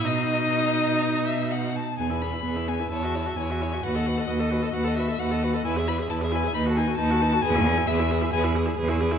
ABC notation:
X:1
M:4/4
L:1/16
Q:1/4=132
K:E
V:1 name="Violin"
d'8- d'2 e2 f2 a2 | g2 b4 g2 a4 g4 | f4 d4 f2 e2 f4 | g2 b2 a2 g2 b2 g2 a4 |
g4 e4 g2 z6 |]
V:2 name="Violin"
d12 z4 | G B G B G B G B c e c e c e c e | B d B d B d B d B d B d B d B d | B e B e B e B e B A B A B A B A |
B G B G B G B G B G B G B G B G |]
V:3 name="Viola"
D12- D2 z2 | B, E B, E B, E B, E E F E F E F E F | F A F A F A F A F A F A F A F A | E G E G E G E G D F D F D F D F |
G E G E G E G E G E G E G E G E |]
V:4 name="Cello" clef=bass
B,,12- B,,2 z2 | E,,4 E,,4 E,,4 E,,4 | D,,4 D,,4 D,,4 D,,4 | E,,4 E,,4 D,,4 D,,4 |
E,,4 E,,4 E,,4 E,,4 |]